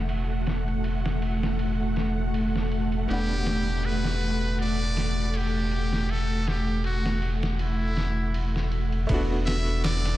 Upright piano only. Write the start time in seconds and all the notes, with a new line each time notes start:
Already playing: A3 B3 D4 F#4
3.06 G3 B3
3.10 D4 F#5
9.07 A3 B3
9.12 D4 F#4